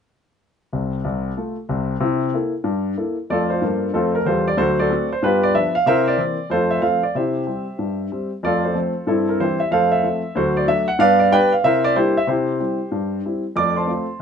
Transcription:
0.73 0.98 C2 medium
0.73 0.98 C3 soft
1.04 1.30 C2 medium
1.04 1.30 C3 medium
1.37 1.55 A3 soft
1.37 1.55 F4 soft
1.37 1.55 A4 soft
1.69 1.95 C2 medium
1.69 1.95 C3 medium
2.00 2.28 C3 medium
2.00 2.20 E4 soft
2.34 2.51 A#3 soft
2.34 2.52 E4 soft
2.34 2.52 A4 soft
2.64 2.92 G2 medium
2.97 3.15 A#3 soft
2.97 3.15 E4 soft
2.97 3.15 A4 soft
3.30 3.56 F2 medium
3.30 3.56 A3 soft
3.30 3.50 F4 medium
3.30 3.50 A4 medium
3.30 3.51 D5 medium
3.50 3.91 F4 soft
3.50 3.91 A4 soft
3.50 3.94 C5 medium
3.62 3.87 G2 medium
3.62 3.88 A#3 medium
3.94 4.19 F2 medium
3.94 4.20 A3 medium
3.94 4.14 C4 medium
3.94 4.14 F4 medium
3.94 4.15 A4 medium
4.15 4.26 A#4 medium
4.25 4.51 E2 medium
4.25 4.52 G3 medium
4.25 4.46 F4 medium
4.25 4.46 A4 medium
4.25 4.47 C5 medium
4.48 4.59 D5 medium
4.57 4.85 D2 medium
4.57 4.76 F#3 soft
4.57 4.78 F#4 medium
4.57 4.78 A4 medium
4.57 4.79 C5 medium
4.79 4.90 F#4 medium
4.79 5.10 A4 medium
4.79 5.11 D5 medium
4.90 5.08 A3 soft
4.90 5.08 C4 soft
4.90 5.09 F#4 soft
5.13 5.23 C5 medium
5.23 5.50 G2 medium
5.23 5.41 B3 soft
5.23 5.43 F4 medium
5.23 5.43 G4 medium
5.23 5.44 B4 medium
5.43 5.55 D5 medium
5.54 5.72 F3 soft
5.54 5.72 B3 soft
5.54 5.72 D4 medium
5.54 5.75 E5 medium
5.75 5.86 F5 medium
5.86 6.13 C3 medium
5.86 6.05 E4 soft
5.86 6.06 A#4 medium
5.86 6.07 C5 medium
5.86 6.07 E5 loud
6.08 6.51 D5 medium
6.18 6.36 E3 soft
6.18 6.36 A#3 soft
6.18 6.36 C4 soft
6.50 6.77 F2 medium
6.50 6.69 A3 soft
6.50 6.71 F4 medium
6.50 6.71 A4 medium
6.50 6.72 C5 medium
6.71 6.82 E5 medium
6.81 6.99 F3 soft
6.81 6.99 A3 soft
6.81 6.99 C4 soft
6.81 7.02 A4 medium
6.81 7.02 C5 medium
6.81 7.03 F5 medium
7.03 7.15 D5 medium
7.15 7.42 C3 medium
7.15 7.34 E4 soft
7.15 8.28 G4 soft
7.15 8.29 C5 soft
7.15 8.32 E5 medium
7.47 7.64 G3 soft
7.47 7.64 C4 soft
7.79 8.06 G2 soft
8.12 8.29 G3 soft
8.12 8.29 C4 soft
8.43 8.70 F2 medium
8.43 8.63 A3 soft
8.43 8.64 F4 medium
8.43 8.64 A4 medium
8.43 8.64 D5 medium
8.65 9.05 F4 soft
8.65 9.05 A4 soft
8.65 9.07 C5 medium
8.75 8.92 F3 soft
8.75 8.92 A3 soft
8.75 8.92 C4 soft
9.07 9.34 G2 medium
9.07 9.27 C4 soft
9.07 9.27 E4 medium
9.07 9.28 A4 medium
9.29 9.40 A#4 medium
9.40 9.58 E3 soft
9.40 9.57 G3 soft
9.40 9.58 C4 soft
9.40 9.60 E4 medium
9.40 9.60 G4 medium
9.40 9.60 C5 medium
9.60 9.71 E5 medium
9.71 9.98 F2 medium
9.71 9.90 A3 soft
9.71 9.91 A4 medium
9.71 9.91 C5 medium
9.71 9.92 F5 medium
9.92 10.35 E5 medium
10.03 10.21 F3 soft
10.03 10.21 A3 soft
10.03 10.21 C4 soft
10.35 10.62 D2 medium
10.35 10.54 F#3 soft
10.35 10.55 F#4 medium
10.35 10.55 A4 medium
10.35 10.56 C5 medium
10.57 10.68 D5 medium
10.67 10.85 F#3 soft
10.67 10.85 A3 soft
10.67 10.85 D4 soft
10.67 10.88 E5 medium
10.88 10.99 F#5 medium
10.99 11.26 G2 medium
10.99 11.18 B3 medium
10.99 11.19 B4 medium
10.99 11.18 D5 medium
10.99 11.20 F5 loud
11.20 11.31 D5 medium
11.32 11.49 G3 soft
11.32 11.49 B3 soft
11.32 11.49 D4 medium
11.32 11.52 B4 medium
11.32 11.51 D5 medium
11.32 11.52 G5 loud
11.53 11.63 F5 medium
11.64 11.91 C3 medium
11.64 11.82 E4 soft
11.64 11.84 A#4 medium
11.64 11.84 C5 medium
11.64 11.84 E5 loud
11.84 11.95 D5 medium
11.95 12.13 G3 soft
11.95 12.13 A#3 soft
11.95 12.13 D4 soft
11.95 12.15 E4 medium
11.95 12.16 G4 medium
11.95 12.16 C5 medium
12.17 12.28 E5 medium
12.27 12.54 C3 medium
12.27 12.59 E4 medium
12.27 13.21 G4 medium
12.27 13.24 C5 medium
12.60 12.77 G3 soft
12.60 12.78 C4 soft
12.60 12.78 E4 soft
12.92 13.19 G2 soft
13.25 13.42 G3 soft
13.25 13.43 C4 soft
13.25 13.43 E4 soft
13.56 13.83 F2 medium
13.56 13.75 A3 soft
13.56 13.76 D5 medium
13.56 13.77 D6 medium
13.76 14.18 C5 soft
13.76 14.18 A5 soft
13.76 14.20 C6 medium
13.87 14.05 A3 soft
13.87 14.05 C4 soft
13.87 14.05 F4 soft

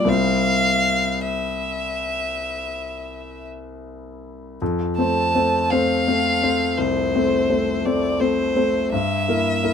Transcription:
0.00 0.06 G3 soft
0.00 0.12 F4 soft
0.00 0.10 D5 medium
0.00 0.12 D5 soft
0.05 4.54 C2 soft
0.05 4.55 G3 soft
0.05 4.56 C4 soft
0.05 4.56 C5 soft
0.05 1.23 F5 medium
1.21 3.48 E5 medium
4.62 4.97 F2 medium
4.97 5.31 A3 soft
4.97 5.31 C4 soft
4.97 5.32 C5 soft
4.97 5.72 A5 medium
5.35 5.68 A3 soft
5.35 5.68 C4 soft
5.35 5.68 C5 soft
5.70 6.04 A3 soft
5.70 6.04 C4 soft
5.70 6.04 C5 soft
5.70 6.79 F5 medium
6.08 6.39 A3 soft
6.08 6.39 C4 soft
6.08 6.40 C5 soft
6.43 6.75 A3 soft
6.43 6.75 C4 soft
6.43 6.76 C5 soft
6.78 7.13 C2 soft
6.78 7.87 C5 medium
7.14 7.46 A3 soft
7.14 7.47 C4 soft
7.14 7.47 C5 soft
7.50 7.81 A3 soft
7.50 7.82 C4 soft
7.50 7.82 C5 soft
7.85 8.17 A3 soft
7.85 8.17 C4 soft
7.85 8.17 C5 soft
7.85 8.22 D5 medium
8.20 8.52 A3 soft
8.20 8.52 C4 soft
8.20 8.91 C5 medium
8.20 8.53 C5 soft
8.56 8.89 A3 soft
8.56 8.89 C4 soft
8.56 8.89 C5 soft
8.92 9.27 G2 medium
8.92 9.73 E5 medium
9.28 9.60 A#3 soft
9.28 9.60 E4 soft
9.28 9.61 A#4 soft
9.63 9.73 A#3 soft
9.63 9.73 E4 soft
9.63 9.73 A#4 soft

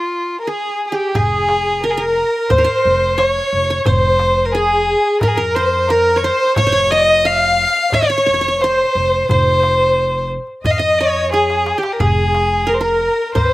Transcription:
0.00 0.40 F4 medium
0.00 0.43 F4 medium
0.40 0.47 A#4 soft
0.40 0.50 A#4 medium
0.47 1.14 G#4 medium
0.47 0.98 G#4 medium
0.47 0.86 G#4 medium
0.87 0.96 G#4 soft
0.92 1.21 G4 medium
0.92 1.17 G4 medium
1.15 2.21 F1 medium
1.15 1.79 G#4 medium
1.15 2.37 G#4 medium
1.15 1.86 G#4 medium
1.15 darbuka dum medium
1.49 darbuka tek medium
1.82 1.95 A#4 medium
1.82 1.97 A#4 medium
1.82 1.92 A#4 medium
1.82 darbuka ka soft
1.90 2.01 G#4 medium
1.97 2.47 A#4 medium
1.97 2.58 A#4 medium
1.97 2.53 A#4 medium
2.50 2.64 D#2 medium
2.50 2.64 C5 medium
2.50 3.19 C5 medium
2.50 darbuka dum medium
2.58 3.71 A#4 medium
2.64 3.24 C5 medium
2.85 3.38 F1 medium
3.18 3.70 C#5 medium
3.18 3.78 C#5 medium
3.18 3.86 C#5 medium
3.18 darbuka tek medium
3.53 3.79 F1 medium
3.70 3.92 C#5 medium
3.78 3.86 C#5 medium
3.85 4.92 F1 medium
3.85 4.47 C5 medium
3.85 4.92 C5 medium
3.85 4.54 C5 medium
3.85 darbuka dum loud
4.19 darbuka tek medium
4.45 4.53 A#4 medium
4.52 5.20 G#4 medium
4.52 5.21 G#4 medium
4.52 5.76 G#4 medium
5.20 6.28 F2 medium
5.20 5.29 A#4 medium
5.20 5.33 A#4 medium
5.20 5.37 A#4 medium
5.20 darbuka dum medium
5.27 5.37 G#4 medium
5.35 5.53 A#4 medium
5.35 5.56 A#4 medium
5.35 5.90 A#4 medium
5.55 5.89 C5 medium
5.55 5.91 C5 medium
5.55 6.22 C5 medium
5.88 6.23 A#4 medium
5.88 6.19 A#4 medium
5.88 7.03 A#4 medium
5.88 darbuka tek medium
6.16 6.30 C#5 medium
6.16 6.26 C#5 medium
6.23 6.57 C5 medium
6.23 6.63 C5 medium
6.23 6.56 C5 medium
6.56 7.64 F1 loud
6.56 6.90 C#5 medium
6.56 6.92 C#5 loud
6.56 6.72 C#5 medium
6.56 darbuka dum loud
6.67 6.78 C5 medium
6.72 7.75 C#5 medium
6.90 7.28 D#5 loud
6.90 7.25 D#5 medium
6.90 7.87 D#5 medium
6.90 darbuka tek medium
7.25 7.93 F5 medium
7.25 8.14 F5 medium
7.25 7.96 F5 loud
7.92 8.06 D#2 medium
7.92 8.57 C#5 medium
7.92 8.02 C#5 medium
7.92 8.63 C#5 medium
7.92 darbuka dum medium
8.02 8.09 C#5 medium
8.10 8.17 C#5 medium
8.18 8.26 C#5 medium
8.26 8.80 F1 medium
8.26 8.34 C#5 medium
8.34 8.41 C#5 medium
8.41 8.48 C#5 medium
8.48 8.70 C#5 medium
8.61 9.28 C5 medium
8.61 9.29 C5 medium
8.61 9.30 C5 medium
8.61 darbuka tek medium
8.95 9.22 F1 medium
9.29 10.35 F1 loud
9.29 10.27 C5 medium
9.29 10.36 C5 medium
9.29 darbuka dum medium
9.63 darbuka tek medium
10.31 darbuka ka soft
10.47 darbuka ka soft
10.64 11.71 F2 medium
10.64 11.28 D#5 medium
10.64 10.79 D#5 medium
10.64 10.72 D#5 medium
10.64 darbuka dum medium
10.71 10.79 F5 medium
10.78 11.00 D#5 medium
10.78 11.75 D#5 medium
10.98 11.32 C#5 medium
10.98 12.03 C#5 medium
11.32 11.79 G#4 medium
11.32 11.75 G#4 medium
11.32 11.84 G#4 medium
11.32 darbuka tek medium
11.50 darbuka ka medium
11.66 darbuka tek medium
11.78 12.06 G4 medium
11.78 11.94 G4 medium
11.78 12.00 G4 medium
11.83 darbuka ka medium
11.92 12.01 A#4 medium
12.00 13.06 F1 medium
12.00 12.70 G#4 medium
12.00 13.22 G#4 medium
12.00 12.68 G#4 medium
12.00 darbuka dum medium
12.35 darbuka tek medium
12.67 12.80 A#4 medium
12.67 12.75 A#4 medium
12.67 12.81 A#4 medium
12.74 12.83 C5 medium
12.81 13.54 A#4 medium
12.81 13.34 A#4 medium
12.81 13.32 A#4 medium
13.34 13.49 D#2 medium
13.34 13.54 C5 medium
13.34 darbuka dum medium

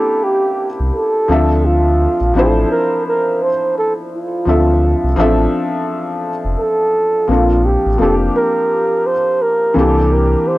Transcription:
0.00 1.31 A#3 medium
0.00 1.29 C4 medium
0.00 1.30 D4 medium
0.00 1.30 E4 medium
0.00 1.31 G4 medium
0.00 0.25 A4 loud
0.24 0.69 G4 loud
0.80 0.91 C2 medium
0.95 1.67 A4 loud
1.28 2.08 D2 loud
1.28 2.16 F3 medium
1.28 2.17 C4 medium
1.28 2.17 D4 medium
1.28 2.18 E5 medium
1.33 2.19 A4 medium
1.65 2.37 F4 medium
2.21 2.33 A#1 medium
2.34 2.65 A1 loud
2.34 3.46 F3 medium
2.34 3.47 C4 medium
2.34 3.48 D4 medium
2.34 3.48 E4 medium
2.34 2.70 A4 medium
2.39 3.49 C5 medium
2.71 3.03 A#4 loud
3.07 3.43 A#4 loud
3.42 3.76 C5 medium
3.78 3.93 A4 medium
4.12 5.49 F4 medium
4.45 4.95 D2 loud
4.45 5.05 F3 medium
4.45 5.05 C4 medium
4.45 5.06 D4 medium
4.45 5.06 E5 medium
4.50 5.07 A4 medium
5.04 5.15 C2 medium
5.16 5.47 A1 medium
5.16 6.29 F3 medium
5.16 6.29 C4 medium
5.16 6.30 D4 medium
5.16 6.30 E5 medium
5.21 6.31 A4 loud
6.45 6.56 F1 medium
6.59 7.31 A4 medium
7.27 7.77 A#1 loud
7.27 7.87 F3 medium
7.27 7.87 A#3 medium
7.27 7.88 C4 medium
7.27 7.89 D4 medium
7.27 7.66 F4 medium
7.33 7.89 A4 medium
7.65 7.99 G4 medium
7.86 7.97 A1 loud
7.98 8.30 F1 loud
7.98 9.11 F3 medium
7.98 9.11 A#3 medium
7.98 9.12 C4 medium
7.98 9.12 D4 medium
7.98 8.15 A4 loud
8.03 9.13 G4 medium
8.35 9.08 A#4 loud
9.06 9.43 C5 loud
9.42 9.79 A#4 loud
9.74 10.36 C2 medium
9.74 10.58 E3 medium
9.74 10.58 A#3 medium
9.74 10.58 C4 medium
9.74 10.58 D4 medium
9.74 10.14 A4 loud
9.79 10.58 G4 medium
10.13 10.49 A#4 loud
10.47 10.58 C5 loud

